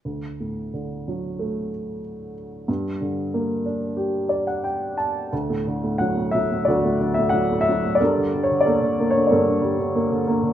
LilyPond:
<<
  \new Staff \with { instrumentName = "Upright piano" } { \time 4/4 \key d \major \tempo 4 = 91 << { r1 | r2 r8 d''16 fis''16 g''8 a''8 | r4 fis''8 e''8 d''8. e''16 fis''8 e''8 | d''8. cis''16 d''8. cis''16 d''4. r8 | } \\ { r1 | r1 | r2 <fis' a'>2 | <a' bes'>4 <a' bes'>4 <a' bes'>2 | } >> }
  \new Staff \with { instrumentName = "Upright piano" } { \clef bass \time 4/4 \key d \major d,8 a,8 d8 fis8 a2 | g,8 d8 bes8 d'8 g'2 | d,16 a,16 d16 a,16 fis16 a,16 fis16 a,16 d,16 a,16 d16 a,16 fis16 a,16 fis16 a,16 | g,16 d16 g16 d16 bes16 d16 bes16 d16 g,16 d16 g16 d16 bes16 d16 bes16 d16 | }
>>